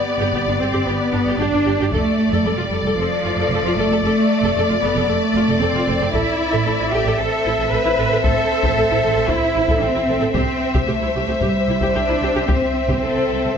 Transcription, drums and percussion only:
1.92 taiko
6.13 taiko
8.24 taiko
8.63 taiko
9.28 taiko
9.68 taiko
10.34 taiko
10.74 taiko
11.41 taiko
11.81 taiko
12.49 taiko
12.89 taiko

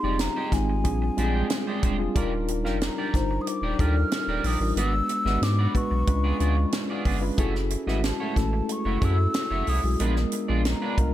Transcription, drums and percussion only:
0.19 snare, closed hi-hat
0.52 kick, snare, closed hi-hat
0.85 kick, closed hi-hat
1.18 closed hi-hat
1.50 snare, closed hi-hat
1.83 kick, closed hi-hat
2.16 kick, closed hi-hat
2.48 closed hi-hat
2.66 snare
2.81 snare, closed hi-hat
3.14 kick, snare, closed hi-hat
3.47 closed hi-hat
3.79 kick, closed hi-hat
4.12 snare, closed hi-hat
4.44 open hi-hat
4.77 closed hi-hat
5.09 closed hi-hat
5.27 snare
5.43 snare, closed hi-hat
5.75 kick, closed hi-hat
6.07 kick, closed hi-hat
6.40 closed hi-hat
6.72 snare, closed hi-hat
7.05 kick, open hi-hat
7.38 kick, closed hi-hat
7.55 snare
7.70 closed hi-hat
7.88 snare
8.04 snare, closed hi-hat
8.36 kick, snare, closed hi-hat
8.69 closed hi-hat
9.02 kick, closed hi-hat
9.34 snare, closed hi-hat
9.67 open hi-hat
10.00 closed hi-hat
10.16 snare
10.32 closed hi-hat
10.65 snare, closed hi-hat
10.98 kick, closed hi-hat

